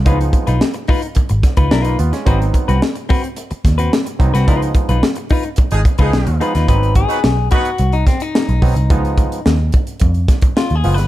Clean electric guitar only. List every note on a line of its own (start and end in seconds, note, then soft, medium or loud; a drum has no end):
0.06 0.23 D#4 medium
0.06 0.20 F4 medium
0.06 0.19 B4 medium
0.20 muted clean electric guitar stroke soft
0.33 muted clean electric guitar stroke soft
0.47 0.60 D#4 medium
0.47 0.61 F4 medium
0.47 0.61 B4 medium
0.74 muted clean electric guitar stroke medium
0.88 1.06 D#4 medium
0.88 1.02 F4 loud
0.88 1.01 B4 loud
1.02 muted clean electric guitar stroke soft
1.16 muted clean electric guitar stroke soft
1.30 muted clean electric guitar stroke medium
1.57 1.70 D#4 medium
1.57 1.71 F4 medium
1.57 1.72 B4 medium
1.71 1.82 D4 medium
1.71 1.97 F4 medium
1.71 1.97 B4 loud
1.82 1.97 D#4 medium
1.99 muted clean electric guitar stroke soft
2.13 muted clean electric guitar stroke medium
2.26 2.44 C4 medium
2.26 2.41 F#4 medium
2.26 2.39 B4 loud
2.40 muted clean electric guitar stroke soft
2.54 muted clean electric guitar stroke soft
2.68 2.80 C4 medium
2.68 2.81 F#4 medium
2.68 2.82 B4 medium
2.95 muted clean electric guitar stroke soft
3.09 3.27 C4 medium
3.09 3.24 F#4 medium
3.09 3.22 B4 medium
3.23 muted clean electric guitar stroke soft
3.37 muted clean electric guitar stroke soft
3.51 muted clean electric guitar stroke medium
3.78 3.92 C4 medium
3.78 3.92 F#4 medium
3.78 3.93 B4 medium
4.06 muted clean electric guitar stroke soft
4.34 4.47 C4 medium
4.34 4.48 F#4 medium
4.34 4.48 B4 medium
4.47 4.68 D#4 medium
4.47 4.62 F4 medium
4.47 4.61 B4 medium
4.62 muted clean electric guitar stroke medium
4.75 muted clean electric guitar stroke soft
4.89 5.02 D#4 medium
4.89 5.03 F4 medium
4.89 5.03 B4 medium
5.03 muted clean electric guitar stroke soft
5.17 muted clean electric guitar stroke medium
5.30 5.48 D#4 medium
5.30 5.45 F4 medium
5.30 5.44 B4 medium
5.45 muted clean electric guitar stroke soft
5.58 muted clean electric guitar stroke soft
5.72 muted clean electric guitar stroke soft
5.99 6.11 D#4 medium
5.99 6.12 F4 medium
5.99 6.13 B4 medium
6.13 muted clean electric guitar stroke soft
6.27 muted clean electric guitar stroke medium
6.41 6.55 D#4 medium
6.41 6.54 F4 medium
6.41 6.54 B4 medium
6.55 6.70 D#4 medium
6.55 6.69 F4 medium
6.55 6.68 B4 medium
6.69 6.96 B4 loud
6.96 7.48 G#4 loud
7.52 7.95 F#4 loud
7.93 8.07 D#4 loud
8.08 8.22 C4 medium
8.22 9.60 D#4 medium
10.57 10.75 F4 medium
10.75 10.94 G#4 medium
10.94 11.07 B4 medium